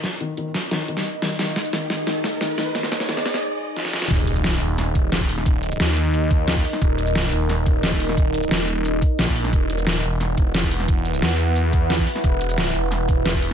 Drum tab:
CC |----------------|----------------|----------------|x---------------|
HH |x-x-x-x-x-x-x-x-|x-x-x-x-x-x-x-o-|x-x-x-x---------|x-x-x-x-x-x-x-o-|
SH |----------------|x-xxx---x-x-x---|x-xxx-----------|x-xxx---x-x-x---|
SD |o-----o-o--o--o-|o-o-o-o-o-o-o-o-|oooooooo----oooo|----o---o---o--o|
BD |----------------|----------------|----------------|o---------o--o--|

CC |----------------|----------------|----------------|----------------|
HH |x-x-x-x-x-x-x-o-|x-x-x-x-x-x-x-o-|x-x-x-x-x-x-x-o-|x-x-x-x-x-x-x-o-|
SH |x-xxx---x-x-x---|x-xxx---x-x-x---|x-xxx---x-x-x---|x-xxx---x-x-x---|
SD |----o-------o--o|----o---o---o--o|----o-------o--o|----o---o---o--o|
BD |o---------o--o--|o---------o--o--|o---------o--o--|o---------o--o--|

CC |----------------|----------------|
HH |x-x-x-x-x-x-x-o-|x-x-x-x-x-x-x-o-|
SH |x-xxx---x-x-x---|x-xxx---x-x-x---|
SD |----o-------o--o|----o---o---o---|
BD |o---------o--o--|o---------o--o--|